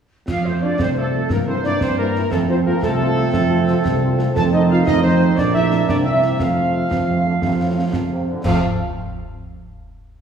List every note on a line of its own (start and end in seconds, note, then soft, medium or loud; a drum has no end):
0.28 0.71 F2 medium
0.28 1.26 F3 medium
0.28 1.26 A3 medium
0.28 0.44 F4 medium
0.28 0.44 F5 medium
0.28 0.45 F5 medium
0.28 concert bass drum medium
0.28 snare medium
0.28 crash soft
0.44 0.51 A3 soft
0.44 0.51 C4 soft
0.44 0.61 C4 medium
0.44 0.51 F4 medium
0.44 0.62 C5 medium
0.44 0.63 C5 medium
0.61 0.68 A3 soft
0.61 0.68 C4 soft
0.61 0.78 D4 medium
0.61 0.68 F4 soft
0.61 0.79 D5 medium
0.61 0.80 D5 medium
0.79 1.22 C2 medium
0.79 0.95 C4 medium
0.79 0.96 C5 medium
0.79 0.89 C5 medium
0.79 concert bass drum medium
0.79 snare medium
0.96 1.28 A3 medium
0.96 1.03 A3 medium
0.96 1.02 C4 medium
0.96 1.03 F4 medium
0.96 1.30 A4 medium
0.96 1.29 A4 medium
1.13 1.20 A3 medium
1.13 1.20 C4 medium
1.13 1.19 F4 medium
1.30 1.72 G2 medium
1.30 2.32 E3 medium
1.30 1.46 A#3 medium
1.30 2.33 A#3 medium
1.30 1.47 A#4 medium
1.30 1.39 A#4 medium
1.30 concert bass drum medium
1.30 snare medium
1.46 1.54 G3 medium
1.46 1.54 A#3 medium
1.46 1.55 C4 medium
1.46 1.53 E4 medium
1.46 1.64 C5 medium
1.46 1.63 C5 medium
1.64 1.70 G3 medium
1.64 1.70 A#3 medium
1.64 1.80 D4 medium
1.64 1.71 E4 medium
1.64 1.80 D5 medium
1.64 1.81 D5 medium
1.64 snare medium
1.81 2.23 G2 medium
1.81 1.97 C4 medium
1.81 1.87 C5 medium
1.81 1.97 C5 medium
1.81 concert bass drum medium
1.81 snare medium
1.98 2.04 G3 medium
1.98 2.04 A#3 medium
1.98 2.33 A#3 medium
1.98 2.04 E4 medium
1.98 2.30 A#4 medium
2.15 2.21 G3 medium
2.15 2.21 A#3 medium
2.15 2.21 E4 medium
2.15 snare soft
2.31 2.74 F2 medium
2.31 4.32 F3 medium
2.31 2.48 A3 medium
2.31 4.35 C4 medium
2.31 2.39 A4 medium
2.31 2.38 A4 medium
2.31 concert bass drum medium
2.31 snare medium
2.49 2.55 A3 medium
2.49 2.55 C4 medium
2.49 2.57 C4 medium
2.49 2.55 F4 medium
2.49 2.55 C5 medium
2.49 2.57 C5 medium
2.65 2.72 A3 medium
2.65 2.73 A#3 medium
2.65 2.72 C4 medium
2.65 2.72 F4 medium
2.65 2.72 A#4 medium
2.65 2.82 A#4 medium
2.82 3.25 C2 medium
2.82 4.32 A3 medium
2.82 4.32 A4 medium
2.82 concert bass drum medium
2.82 snare medium
3.00 3.06 A3 medium
3.00 3.07 C4 medium
3.00 3.06 F4 medium
3.17 3.23 A3 medium
3.17 3.23 C4 medium
3.17 3.23 F4 medium
3.33 3.76 F2 medium
3.33 concert bass drum medium
3.33 snare medium
3.51 3.57 A3 medium
3.51 3.57 C4 medium
3.51 3.57 F4 medium
3.68 3.74 A3 medium
3.68 3.74 C4 medium
3.68 3.74 F4 medium
3.68 snare medium
3.84 4.27 C2 medium
3.84 concert bass drum medium
3.84 snare medium
4.02 4.08 A3 medium
4.02 4.08 C4 medium
4.02 4.08 F4 medium
4.19 4.25 A3 medium
4.19 4.25 C4 medium
4.19 4.25 F4 medium
4.19 snare medium
4.34 4.80 F2 medium
4.34 5.38 D#3 medium
4.34 4.83 A3 medium
4.34 4.83 C4 medium
4.34 5.34 C4 medium
4.34 4.83 D#4 medium
4.34 4.42 A4 loud
4.34 4.40 A5 loud
4.34 4.43 A5 medium
4.34 concert bass drum medium
4.34 snare medium
4.34 crash soft
4.52 4.60 D#4 medium
4.52 4.58 D#5 medium
4.52 4.61 D#5 medium
4.69 4.86 F4 medium
4.69 4.85 F5 medium
4.69 4.78 F5 medium
4.85 5.32 F2 medium
4.85 5.34 A3 medium
4.85 5.34 C4 medium
4.85 5.34 D#4 medium
4.85 5.03 D#4 loud
4.85 5.03 D#5 medium
4.85 concert bass drum medium
4.85 snare medium
5.03 5.36 C4 medium
5.03 5.35 C5 medium
5.03 5.38 C5 medium
5.37 5.83 A#1 medium
5.37 5.89 D3 medium
5.37 6.24 A#3 medium
5.37 5.63 A#3 medium
5.37 5.89 D4 medium
5.37 5.54 D4 medium
5.37 5.43 D5 medium
5.37 5.54 D5 medium
5.37 concert bass drum medium
5.37 snare medium
5.53 5.86 E4 medium
5.53 5.86 E5 medium
5.63 5.75 A3 medium
5.71 snare medium
5.87 6.34 C2 medium
5.87 6.25 C3 medium
5.87 6.36 G3 medium
5.87 6.36 A#3 medium
5.87 6.38 C4 medium
5.87 6.07 D4 medium
5.87 6.04 D5 medium
5.87 5.96 D5 medium
5.87 concert bass drum medium
5.87 snare medium
6.05 6.41 E4 medium
6.05 6.37 E5 medium
6.22 snare soft
6.39 6.85 F2 medium
6.39 6.85 C3 medium
6.39 8.27 F3 medium
6.39 8.27 A3 medium
6.39 6.85 A3 medium
6.39 8.23 C4 medium
6.39 8.27 F4 medium
6.39 8.23 F5 medium
6.39 8.28 F5 medium
6.39 concert bass drum medium
6.39 snare medium
6.90 7.36 F2 medium
6.90 6.98 F3 medium
6.90 concert bass drum medium
6.90 snare medium
7.10 7.17 C3 medium
7.26 7.34 D3 medium
7.42 7.87 F2 medium
7.42 7.51 C3 medium
7.42 concert bass drum medium
7.42 snare medium
7.61 7.92 A2 medium
7.93 8.31 F2 medium
7.93 8.01 A#2 medium
7.93 concert bass drum medium
7.93 snare medium
8.11 8.26 C3 medium
8.27 8.43 D3 medium
8.43 8.59 F2 medium
8.43 8.59 C3 medium
8.43 8.58 F3 medium
8.43 8.58 A3 medium
8.43 8.59 A3 medium
8.43 8.58 C4 medium
8.43 8.59 F4 medium
8.43 8.63 F5 medium
8.43 8.60 F5 medium
8.43 concert bass drum medium
8.43 snare medium
8.43 crash medium